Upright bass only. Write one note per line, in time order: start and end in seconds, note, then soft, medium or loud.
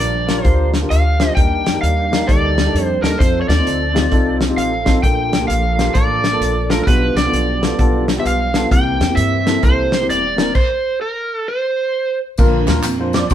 0.00 0.38 A#1 medium
0.45 0.84 D2 medium
0.91 1.30 D2 medium
1.37 1.61 D#2 medium
1.66 1.80 F2 medium
1.83 2.22 D#2 medium
2.29 2.68 D2 medium
2.74 2.99 F2 medium
3.03 3.17 D#2 medium
3.20 3.45 F2 medium
3.49 3.63 D#2 medium
3.66 4.05 D2 medium
4.12 4.51 C2 medium
4.57 4.96 A1 medium
5.04 5.32 A#1 medium
5.32 5.47 C2 medium
5.49 5.88 A#1 medium
5.95 6.34 A1 loud
6.41 6.80 A#1 medium
6.87 7.12 B1 loud
7.15 7.30 C2 medium
7.33 7.72 B1 medium
7.79 8.18 B1 medium
8.25 8.64 B1 medium
8.71 8.96 C2 loud
9.00 9.14 E2 medium
9.17 9.56 G2 loud
9.63 10.02 C2 loud
10.09 10.48 E1 medium
12.38 12.63 A#1 loud
12.68 12.82 D#2 medium
12.84 13.24 F2 loud
13.31 13.34 D2 loud